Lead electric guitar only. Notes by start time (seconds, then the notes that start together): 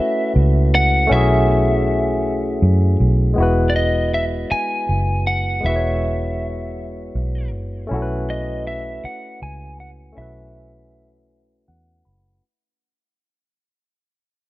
Already playing: E5
0.75 F#5
1.12 E5
3.70 D5
3.76 D#5
4.14 E5
4.52 G#5
5.27 F#5
5.66 E5
8.30 D#5
8.67 E5
9.05 F#5
9.43 G#5
9.80 F#5
10.18 E5